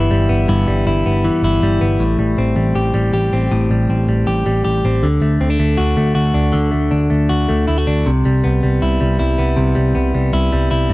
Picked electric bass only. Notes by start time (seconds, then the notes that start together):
0.11 G1
0.29 G1
0.49 G1
0.68 G1
0.86 G1
1.06 G1
1.43 G1
1.62 G1
1.81 G1
1.99 A1
2.19 A1
2.38 A1
2.56 A1
2.75 A1
2.94 A1
3.13 A1
3.33 A1
3.52 A1
3.70 A1
3.89 A1
4.08 A1
4.27 A1
4.46 A1
4.65 A1
4.85 A1
5.03 D2
5.21 D2
5.40 D2
5.59 D2
5.79 D2
5.97 D2
6.15 D2
6.34 D2
6.54 D2
6.73 D2
6.92 D2
7.11 D2
7.30 D2
7.50 D2
7.69 D2
7.88 D2
8.07 C2
8.26 C2
8.45 C2
8.64 C2
8.82 C2
9.02 C2
9.20 C2
9.39 C2
9.58 C2
9.77 C2
9.96 C2
10.15 C2
10.33 C2
10.53 C2
10.71 C2
10.90 G1